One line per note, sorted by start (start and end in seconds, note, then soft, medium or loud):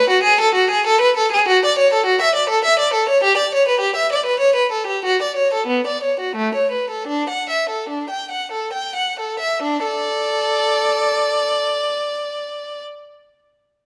0.10 0.24 F#4 medium
0.23 0.38 G#4 medium
0.41 0.54 A4 medium
0.55 0.68 F#4 medium
0.70 0.84 G#4 medium
0.87 0.99 A4 medium
1.01 1.14 B4 medium
1.17 1.30 A4 medium
1.32 1.46 G#4 medium
1.48 1.61 F#4 medium
1.65 1.77 D5 medium
1.78 1.91 C#5 medium
1.93 2.05 A4 medium
2.06 2.19 F#4 medium
2.21 2.34 E5 medium
2.35 2.48 D5 medium
2.49 2.62 A4 medium
2.64 2.77 E5 medium
2.79 2.92 D5 medium
2.93 3.07 A4 medium
3.09 3.22 C#5 medium
3.24 3.37 G4 medium
3.37 3.51 D5 medium
3.55 3.67 C#5 medium
3.68 3.81 B4 medium
3.80 3.94 G4 medium
3.96 4.10 E5 medium
4.12 4.25 D5 medium
4.26 4.40 B4 medium
4.40 4.54 C#5 medium
4.56 4.70 B4 medium
4.72 4.87 A4 medium
4.87 5.03 G4 medium
5.05 5.20 F#4 medium
5.22 5.37 D5 medium
5.37 5.52 C#5 medium
5.54 5.68 A4 medium
5.67 5.83 B3 medium
5.87 6.02 D5 medium
6.03 6.19 C#5 soft
6.20 6.36 F#4 soft
6.36 6.53 A3 medium
6.55 6.72 C#5 soft
6.71 6.90 B4 soft
6.90 7.09 A4 soft
7.07 7.28 D4 medium
7.29 7.49 F#5 soft
7.50 7.69 E5 soft
7.69 7.89 A4 soft
7.89 8.09 D4 soft
8.10 8.30 G5 soft
8.31 8.51 F#5 soft
8.52 8.72 A4 soft
8.73 8.94 G5 soft
8.96 9.17 F#5 soft
9.20 9.41 A4 soft
9.40 9.62 E5 soft
9.62 9.86 D4 medium
9.85 11.63 A4 medium
9.85 12.81 D5 medium